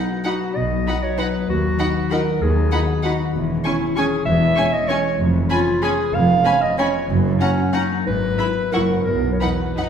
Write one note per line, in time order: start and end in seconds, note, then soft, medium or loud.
0.00 0.55 B2 soft
0.00 0.70 F#3 soft
0.00 0.40 B3 soft
0.00 0.25 D#4 soft
0.00 0.27 D#4 medium
0.09 1.02 F#4 soft
0.25 0.33 D#4 soft
0.25 0.85 D#4 soft
0.25 0.57 F#4 medium
0.25 0.34 F#5 soft
0.25 0.33 B5 soft
0.41 1.33 B3 soft
0.56 0.82 B1 soft
0.56 1.50 B2 soft
0.56 0.82 B2 soft
0.56 1.04 D#5 medium
0.71 3.35 F#3 soft
0.86 1.18 D#4 soft
0.86 0.95 D#4 soft
0.86 0.96 F#5 soft
0.86 0.94 B5 soft
1.03 1.79 F#4 soft
1.03 1.20 C#5 medium
1.18 1.26 D#4 soft
1.18 1.63 D#4 soft
1.18 1.49 B4 medium
1.18 1.27 F#5 soft
1.18 1.27 B5 soft
1.35 2.56 B3 soft
1.49 1.75 D#2 soft
1.49 1.75 D#2 medium
1.49 2.41 D#3 soft
1.49 2.13 F#4 medium
1.64 2.26 D#4 soft
1.79 1.87 D#4 soft
1.79 2.11 F#4 soft
1.79 1.88 F#5 soft
1.79 1.87 B5 soft
1.96 2.88 B4 soft
2.10 2.20 D#4 soft
2.10 2.72 F#4 soft
2.10 2.43 A#4 medium
2.10 2.19 F#5 soft
2.10 2.18 B5 soft
2.27 3.19 D#4 soft
2.42 2.67 D#2 medium
2.42 3.36 D#3 soft
2.42 3.06 G#4 medium
2.57 3.36 B3 soft
2.72 2.80 D#4 soft
2.72 3.03 F#4 soft
2.72 2.80 F#5 soft
2.72 2.80 B5 soft
2.89 3.36 B4 soft
3.03 3.13 D#4 soft
3.03 3.34 F#4 medium
3.03 3.36 F#4 soft
3.03 3.11 F#5 soft
3.03 3.13 B5 soft
3.20 3.36 D#4 soft
3.34 3.60 E1 medium
3.34 3.60 E2 medium
3.34 4.25 E3 soft
3.49 3.80 C#4 soft
3.65 3.73 C#4 soft
3.65 3.98 E4 medium
3.65 3.96 G#4 soft
3.65 3.73 G#5 soft
3.65 3.73 C#6 medium
3.82 4.11 C#4 soft
3.96 4.05 C#4 medium
3.96 4.25 G#4 medium
3.96 4.56 G#4 soft
3.96 4.05 G#5 soft
3.96 4.04 C#6 soft
4.12 4.72 C#4 soft
4.25 4.52 E1 medium
4.25 4.52 E2 medium
4.25 5.21 E3 medium
4.25 4.74 E5 medium
4.42 7.11 G#3 soft
4.56 4.65 C#4 soft
4.56 4.88 G#4 soft
4.56 4.65 G#5 soft
4.56 4.64 C#6 medium
4.73 5.04 C#4 soft
4.73 4.90 D#5 medium
4.88 4.97 C#4 medium
4.88 5.65 G#4 soft
4.88 5.19 C#5 medium
4.88 4.97 G#5 soft
4.88 4.96 C#6 soft
5.05 5.49 C#4 soft
5.20 5.45 F1 medium
5.20 5.45 F2 medium
5.20 6.12 F2 soft
5.35 5.97 B3 soft
5.49 5.58 C#4 soft
5.49 5.81 C#4 soft
5.49 5.84 F4 medium
5.49 5.58 G#5 soft
5.49 5.58 B5 medium
5.66 6.61 G#4 soft
5.82 6.44 C#4 soft
5.82 5.91 C#4 medium
5.82 6.16 G#4 medium
5.82 5.90 G#5 soft
5.82 5.91 B5 soft
5.98 6.93 B3 soft
6.13 6.39 F1 medium
6.13 7.11 F2 medium
6.13 6.40 F2 medium
6.13 6.63 F5 medium
6.29 7.11 F3 soft
6.45 6.53 C#4 soft
6.45 6.78 C#4 soft
6.45 6.54 G#5 soft
6.45 6.53 B5 medium
6.62 7.11 G#4 soft
6.62 6.78 D#5 medium
6.79 6.87 C#4 medium
6.79 7.40 C#4 soft
6.79 7.09 C#5 medium
6.79 6.87 G#5 soft
6.79 6.87 B5 soft
6.95 7.11 B3 soft
7.10 7.35 F#1 medium
7.10 7.35 F#2 medium
7.10 8.09 F#2 medium
7.25 7.90 A#3 soft
7.40 7.75 C#4 medium
7.40 7.48 C#4 soft
7.40 7.73 C#4 soft
7.40 7.49 F#5 soft
7.40 7.49 A#5 soft
7.58 8.09 F#4 soft
7.73 7.81 C#4 medium
7.73 8.09 C#4 soft
7.73 8.06 D#4 medium
7.73 7.82 F#5 soft
7.73 7.82 A#5 soft
7.91 8.09 A#3 soft
8.07 8.34 G#1 medium
8.07 8.34 G#2 medium
8.07 8.75 G#2 soft
8.07 8.73 B4 medium
8.23 8.75 B3 soft
8.38 8.46 E4 soft
8.38 8.89 E4 soft
8.38 8.47 B5 soft
8.56 8.75 B4 soft
8.72 9.01 F#1 soft
8.72 9.01 F#2 soft
8.72 9.08 F#2 soft
8.72 8.81 E4 soft
8.72 9.06 A#4 medium
8.72 8.80 F#5 soft
8.72 8.81 C#6 soft
8.91 9.08 E4 soft
8.91 9.59 F#4 soft
9.06 9.36 B1 soft
9.06 9.36 B2 soft
9.06 9.89 B2 soft
9.06 9.35 A#4 medium
9.24 9.89 B3 soft
9.33 9.42 C#5 soft
9.41 9.75 E2 soft
9.41 9.50 D#4 soft
9.41 9.77 D#4 soft
9.41 9.89 B4 medium
9.41 9.49 F#5 soft
9.41 9.50 B5 soft
9.60 9.89 F#4 soft
9.77 9.89 F#2 soft
9.77 9.85 D#4 soft
9.77 9.89 D#4 soft
9.77 9.85 F#5 soft
9.77 9.85 B5 soft